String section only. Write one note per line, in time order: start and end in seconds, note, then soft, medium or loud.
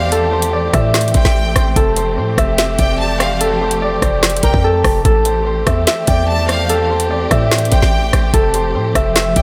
0.00 1.73 E3 medium
0.00 8.30 A3 medium
0.00 5.01 C4 medium
0.00 1.73 G4 medium
1.76 5.02 F3 medium
1.76 5.02 G4 medium
5.05 8.31 E3 medium
5.05 9.42 C4 medium
5.05 9.42 G4 medium
8.34 9.42 F3 medium
8.34 9.42 A3 medium